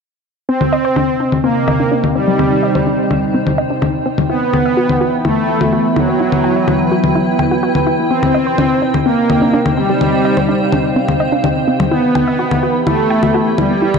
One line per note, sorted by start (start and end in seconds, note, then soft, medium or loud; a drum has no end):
0.49 4.26 C3 medium
0.49 1.35 C4 loud
0.49 0.58 C4 medium
0.49 4.26 C4 medium
0.49 4.30 D#4 medium
0.49 4.26 D#5 medium
0.49 4.26 G5 medium
0.61 low conga medium
0.65 13.99 G5 medium
0.73 0.84 D#5 medium
0.85 0.94 C5 medium
0.91 4.30 C5 medium
0.96 1.08 D4 medium
0.96 low conga medium
1.20 1.30 D4 medium
1.32 low conga medium
1.44 2.06 A#3 medium
1.44 1.53 C4 medium
1.68 1.79 D#5 medium
1.68 low conga medium
1.80 1.89 D4 medium
1.92 2.03 D4 medium
2.04 low conga medium
2.15 3.49 G3 loud
2.15 2.21 C4 medium
2.28 2.37 G3 medium
2.39 2.49 C4 medium
2.39 low conga medium
2.63 2.75 D#5 medium
2.75 2.84 C5 medium
2.75 low conga medium
2.87 2.98 D4 medium
3.11 3.20 D4 medium
3.11 low conga medium
3.34 3.44 C4 medium
3.47 low conga medium
3.58 3.70 D#5 medium
3.70 3.80 D4 medium
3.82 3.94 D4 medium
3.82 low conga medium
4.06 4.12 C4 medium
4.18 4.27 G3 medium
4.18 low conga medium
4.30 8.07 E3 medium
4.30 5.16 B3 loud
4.30 8.07 B3 medium
4.30 4.39 E4 medium
4.30 8.11 E4 medium
4.30 8.07 E5 medium
4.30 8.07 B5 medium
4.53 4.65 G5 medium
4.53 low conga medium
4.66 4.75 E5 medium
4.77 4.89 F#4 medium
4.77 8.11 B4 medium
4.89 low conga medium
5.01 5.11 F#4 medium
5.25 5.87 A3 loud
5.25 5.34 E4 medium
5.25 low conga medium
5.49 5.60 G5 medium
5.61 5.70 F#4 medium
5.61 low conga medium
5.72 5.84 F#4 medium
5.96 7.30 F#3 loud
5.96 6.02 E4 medium
5.96 low conga medium
6.09 6.18 B3 medium
6.20 6.30 E4 medium
6.32 low conga medium
6.44 6.56 G5 medium
6.56 6.65 E5 medium
6.68 6.79 F#4 medium
6.68 low conga medium
6.92 7.01 F#4 medium
7.04 low conga medium
7.15 7.25 E4 medium
7.39 7.51 G5 medium
7.39 low conga medium
7.51 7.60 F#4 medium
7.63 7.75 F#4 medium
7.75 low conga medium
7.87 7.92 E4 medium
7.99 8.08 B3 medium
8.10 11.88 C3 medium
8.10 11.88 C4 medium
8.10 8.20 C4 medium
8.10 8.97 C4 loud
8.10 11.92 D#4 medium
8.10 11.88 D#5 medium
8.10 9.99 G5 medium
8.23 low conga medium
8.34 8.46 D#5 medium
8.46 11.92 C5 medium
8.46 8.56 C5 medium
8.58 8.70 D4 medium
8.58 low conga medium
8.82 8.92 D4 medium
8.94 low conga medium
9.06 9.68 A#3 medium
9.06 9.15 C4 medium
9.30 9.41 D#5 medium
9.30 low conga medium
9.42 9.51 D4 medium
9.53 9.65 D4 medium
9.66 low conga medium
9.77 11.11 G3 loud
9.77 9.83 C4 medium
9.89 9.99 G3 medium
10.01 10.11 C4 medium
10.01 11.90 F5 medium
10.01 low conga medium
10.25 10.37 D#5 medium
10.37 10.46 C5 medium
10.37 low conga medium
10.49 10.60 D4 medium
10.72 10.82 D4 medium
10.72 low conga medium
10.96 11.06 C4 medium
11.08 low conga medium
11.20 11.32 D#5 medium
11.32 11.41 D4 medium
11.44 11.56 D4 medium
11.44 low conga medium
11.68 11.73 C4 medium
11.80 11.89 G3 medium
11.80 low conga loud
11.91 13.99 E3 medium
11.91 12.78 B3 loud
11.91 13.99 B3 medium
11.91 13.99 E4 medium
11.91 12.01 E4 medium
11.91 13.99 G4 medium
11.91 13.99 E5 medium
11.91 13.80 B5 medium
12.15 12.27 G5 medium
12.15 low conga medium
12.28 12.37 E5 medium
12.39 12.51 F#4 medium
12.39 13.99 B4 medium
12.51 low conga medium
12.63 12.72 F#4 medium
12.87 13.49 A3 loud
12.87 12.96 E4 medium
12.87 low conga medium
13.11 13.22 G5 medium
13.23 13.32 F#4 medium
13.23 low conga medium
13.34 13.46 F#4 medium
13.58 13.99 G3 loud
13.58 13.64 E4 medium
13.58 low conga medium
13.70 13.80 B3 medium
13.82 13.92 E4 medium
13.82 13.99 C#6 medium
13.94 low conga medium